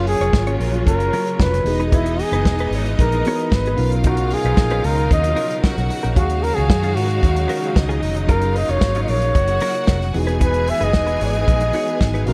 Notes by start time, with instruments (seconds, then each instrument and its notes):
Already playing: fingered electric bass F#1, string section C#3 F#3 A#3 F4, tine electric piano F#3 C#4 F4 G#4 A#4, violin section C#4 C#5
0.07 flugelhorn G#4, muted clean electric guitar stroke, open hi-hat
0.20 fingered electric bass F1, clean electric guitar F#3 C#4 F4 C#5, closed hi-hat
0.33 fingered electric bass G#1, muted clean electric guitar stroke, kick, snare
0.47 clean electric guitar F#3 C#4 F4 C#5, closed hi-hat
0.60 fingered electric bass A#1, clean electric guitar F#3 C#4 F4 A#4, open hi-hat
0.74 muted clean electric guitar stroke, closed hi-hat
0.87 fingered electric bass F#1, flugelhorn A#4, muted clean electric guitar stroke, kick, closed hi-hat
0.99 muted clean electric guitar stroke, closed hi-hat
1.13 clean electric guitar F#3 C#4 F4 A#4, open hi-hat
1.26 clean electric guitar F#3 F4 A#4, closed hi-hat
1.39 fingered electric bass F1, clean electric guitar F#3 C#4 F4 A#4, flugelhorn B4, kick, snare
1.53 muted clean electric guitar stroke, snare, closed hi-hat
1.64 fingered electric bass E1, tine electric piano E3 B3 D#4 F#4 G#4, string section E3 G#3 B3 D#4, violin section D#4 D#5, muted clean electric guitar stroke, open hi-hat
1.80 clean electric guitar B3 D#4 G#4 B4, closed hi-hat
1.92 clean electric guitar B3 D#4 G#4 B4, flugelhorn E4, kick, closed hi-hat
2.06 muted clean electric guitar stroke, closed hi-hat
2.19 flugelhorn G#4, muted clean electric guitar stroke, open hi-hat
2.32 fingered electric bass F#1, clean electric guitar B3 D#4 G#4 B4, closed hi-hat
2.45 fingered electric bass E1, kick, snare
2.58 clean electric guitar B3 D#4 G#4 B4, closed hi-hat
2.71 fingered electric bass G#1, clean electric guitar B3, open hi-hat
2.75 clean electric guitar D#4 G#4 C#5
2.86 closed hi-hat
2.99 fingered electric bass A#1, flugelhorn A#4, muted clean electric guitar stroke, kick, closed hi-hat
3.12 muted clean electric guitar stroke, closed hi-hat
3.25 tine electric piano E3 B3 D#4 F#4 A#4, clean electric guitar B3 D#4 G#4 C#5, open hi-hat
3.33 tine electric piano B4
3.39 clean electric guitar B3 D#4 G#4 B4, closed hi-hat
3.52 fingered electric bass G#1, flugelhorn B4, kick, snare
3.65 clean electric guitar B3 D#4 G#4 B4, closed hi-hat
3.76 fingered electric bass B1, tine electric piano B2 B3 C#4 D#4 F4 A#4, string section C#3 F#3 D#4 A#4, violin section F4 F5, open hi-hat
3.92 muted clean electric guitar stroke, closed hi-hat
4.04 clean electric guitar F3 C#4 D#4 A#4, flugelhorn F#4, kick, closed hi-hat
4.17 closed hi-hat
4.30 flugelhorn G#4, muted clean electric guitar stroke, open hi-hat
4.45 fingered electric bass B1, clean electric guitar F3 C#4 D#4 B4, closed hi-hat
4.57 fingered electric bass A#1, muted clean electric guitar stroke, kick, snare
4.70 clean electric guitar F3 C#4 D#4 B4, closed hi-hat
4.84 fingered electric bass C#2, clean electric guitar F3 C#4 D#4 A#4, flugelhorn A#4, open hi-hat
4.97 muted clean electric guitar stroke, closed hi-hat
5.10 fingered electric bass D#2, flugelhorn D#5, muted clean electric guitar stroke, kick, closed hi-hat
5.23 muted clean electric guitar stroke, closed hi-hat
5.36 clean electric guitar F3 C#4 D#4 A#4, open hi-hat
5.50 clean electric guitar F3 C#4 D#4 A#4, closed hi-hat
5.64 clean electric guitar F3 C#4 D#4 A#4, violin section F#4 F#5, kick, snare
5.77 fingered electric bass B1, muted clean electric guitar stroke, snare, closed hi-hat
5.90 muted clean electric guitar stroke, open hi-hat
6.03 fingered electric bass A#1, clean electric guitar F3 C#4 D#4 A#4, closed hi-hat
6.15 fingered electric bass D#2, tine electric piano D#3 C#4 F#4 G#4 F5, clean electric guitar F#3 C#4 F4 G#4, string section F#3 G#3 D#4, violin section F#4 F5, flugelhorn F#4, kick, closed hi-hat
6.29 muted clean electric guitar stroke, closed hi-hat
6.43 flugelhorn A#4, muted clean electric guitar stroke, open hi-hat
6.55 fingered electric bass C#2, clean electric guitar F#3 C#4 F4 G#4, flugelhorn G#4, closed hi-hat
6.70 fingered electric bass F#2, kick, snare
6.83 clean electric guitar F#3 C#4 F4 G#4, closed hi-hat
6.95 fingered electric bass G#2, clean electric guitar F#3 C#4 F4 A#4, flugelhorn F#4, open hi-hat
7.10 muted clean electric guitar stroke, closed hi-hat
7.23 fingered electric bass D#2, muted clean electric guitar stroke, kick, closed hi-hat
7.36 muted clean electric guitar stroke, closed hi-hat
7.48 clean electric guitar F#3 C#4 F4 A#4, open hi-hat
7.62 clean electric guitar F#3 C#4 F4 G#4, closed hi-hat
7.75 fingered electric bass C#2, violin section D#4 D#5, muted clean electric guitar stroke, kick, snare
7.89 clean electric guitar F#3 C#4 F4 G#4, closed hi-hat
8.01 fingered electric bass F1, muted clean electric guitar stroke, open hi-hat
8.15 muted clean electric guitar stroke, closed hi-hat
8.27 fingered electric bass F#1, tine electric piano F#3 C#4 F#4 G#4 A#4, clean electric guitar F#3 C#4 F4 A#4, string section A#3, violin section F4 F5, flugelhorn A#4, kick, closed hi-hat
8.41 closed hi-hat
8.55 flugelhorn D#5, muted clean electric guitar stroke, open hi-hat
8.69 fingered electric bass F1, clean electric guitar F#3 C#4 F4 C#5, flugelhorn C#5, closed hi-hat
8.81 fingered electric bass G#1, kick, snare
8.95 clean electric guitar F#3 C#4 F4 C#5, closed hi-hat
9.03 flugelhorn D#5
9.08 fingered electric bass A#1, clean electric guitar F#3 C#4 F4 A#4, flugelhorn C#5, open hi-hat
9.22 closed hi-hat
9.35 fingered electric bass F#1, violin section F#4 F#5, muted clean electric guitar stroke, kick, closed hi-hat
9.47 muted clean electric guitar stroke, closed hi-hat
9.60 clean electric guitar F#3 C#4 F4 A#4, open hi-hat
9.74 clean electric guitar F#3 C#4 F4 A#4, closed hi-hat
9.86 fingered electric bass F1, clean electric guitar F#3 C#4 F4 A#4, kick, snare
10.01 muted clean electric guitar stroke, snare, closed hi-hat
10.14 fingered electric bass E1, tine electric piano E3 B3 D#4 F#4 G#4, string section E3 G#3 B3 D#4, violin section G#4 G#5, muted clean electric guitar stroke, open hi-hat
10.27 clean electric guitar B3 D#4 G#4 B4, closed hi-hat
10.39 clean electric guitar B3 D#4 G#4 B4, kick, closed hi-hat
10.43 flugelhorn B4
10.53 muted clean electric guitar stroke, closed hi-hat
10.67 flugelhorn E5, muted clean electric guitar stroke, open hi-hat
10.81 fingered electric bass F#1, clean electric guitar B3 D#4 G#4 B4, flugelhorn D#5, closed hi-hat
10.93 fingered electric bass E1, muted clean electric guitar stroke, kick, snare
11.07 clean electric guitar B3 D#4 G#4 B4, closed hi-hat
11.20 fingered electric bass G#1, clean electric guitar B3 D#4 G#4 C#5, open hi-hat
11.25 flugelhorn D#5
11.34 closed hi-hat
11.46 fingered electric bass A#1, muted clean electric guitar stroke, kick, closed hi-hat
11.60 muted clean electric guitar stroke, closed hi-hat
11.73 tine electric piano E3 B3 D#4 F#4 G#4, clean electric guitar B3 D#4 G#4 C#5, open hi-hat
11.88 clean electric guitar B3 D#4 G#4 B4, closed hi-hat
12.01 fingered electric bass G#1, kick, snare
12.14 clean electric guitar B3 D#4 G#4 B4, closed hi-hat
12.25 fingered electric bass B1, tine electric piano B2 B3 C#4 D#4 F#4 A#4, string section C#3 F#3 B3 D#4, violin section F4 F5, muted clean electric guitar stroke, open hi-hat